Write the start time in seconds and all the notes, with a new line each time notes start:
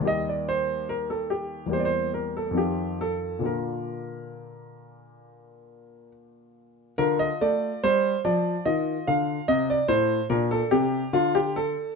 0.00 D#2 G3 A#3
0.05 G4 D#5
0.29 D5
0.49 C5
0.89 A#4
1.10 A4
1.30 G4
1.66 E2 G3 A#3
1.71 G4 C5
1.80 D5
1.85 C5
2.14 A#4
2.37 A4
2.51 F2 D#3 C4
2.56 F4 G4
3.01 A4
3.39 A#2 D3 A#3
3.45 F4 A#4
6.98 D3 F4 A#4
7.19 D#5
7.41 A3 D5
7.84 G3 C5
8.25 F3 D5
8.66 D#3 F4 D#5
9.07 D3 F5
9.48 C3 D#5
9.70 D5
9.88 A2 C5
10.30 A#2 D4 A#4
10.51 A4
10.71 C3 G4
11.13 D3 F4
11.35 G4
11.56 A4